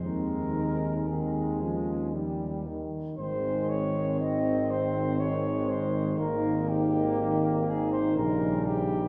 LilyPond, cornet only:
\new Staff \with { instrumentName = "Cornet" } { \time 3/4 \key aes \major \tempo 4 = 60 bes'4 aes'4 r4 | c''8 des''8 ees''8 c''8 des''8 c''8 | bes'8 g'4 aes'16 c''16 bes'8 g'8 | }